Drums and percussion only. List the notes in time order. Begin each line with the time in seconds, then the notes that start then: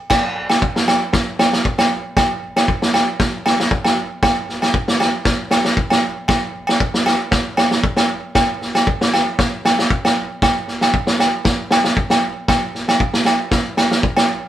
0.10 kick, snare, crash, low agogo
0.50 snare, low agogo
0.62 kick
0.76 snare
0.88 snare, low agogo
1.13 kick, snare
1.39 snare, low agogo
1.53 snare
1.65 kick
1.78 snare, low agogo
2.17 kick, snare, low agogo
2.56 snare, low agogo
2.68 kick
2.82 snare
2.94 snare, low agogo
3.20 kick, snare
3.46 snare, low agogo
3.60 snare
3.71 kick
3.84 snare, low agogo
4.23 kick, snare, low agogo
4.49 snare
4.62 snare, low agogo
4.74 kick
4.88 snare
5.00 snare, low agogo
5.25 kick, snare
5.51 snare, low agogo
5.64 snare
5.77 kick
5.90 snare, low agogo
6.28 kick, snare, low agogo
6.67 snare, low agogo
6.80 kick
6.94 snare
7.06 snare, low agogo
7.31 kick, snare
7.57 snare, low agogo
7.71 snare
7.84 kick
7.96 snare, low agogo
8.35 kick, snare, low agogo
8.61 snare
8.75 snare, low agogo
8.87 kick
9.01 snare
9.13 snare, low agogo
9.39 kick, snare
9.65 snare, low agogo
9.79 snare
9.90 kick
10.05 snare, low agogo
10.42 kick, snare, low agogo
10.68 snare
10.81 snare, low agogo
10.94 kick
11.07 snare
11.19 snare, low agogo
11.45 kick, snare
11.71 snare, low agogo
11.84 snare
11.97 kick
12.10 snare, low agogo
12.48 kick, snare, low agogo
12.75 snare
12.88 snare, low agogo
13.00 kick
13.14 snare
13.25 snare, low agogo
13.51 kick, snare
13.77 snare, low agogo
13.91 snare
14.03 kick
14.17 snare, low agogo